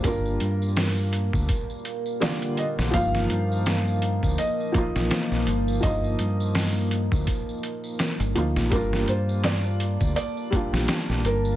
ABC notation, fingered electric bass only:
X:1
M:4/4
L:1/16
Q:"Swing 16ths" 1/4=83
K:Gm
V:1 name="Fingered electric bass" clef=bass
z2 G,,4- G,, D,, z6 z B,,, | G,,,2 G,,4- G,, D,, z3 B,,, z B,,, G,,,2 | G,,,2 G,,4- G,, D,, z4 z G,,, D,, B,,, | G,,,2 G,,4- G,, D,, z3 B,,, z B,,, G,,,2 |]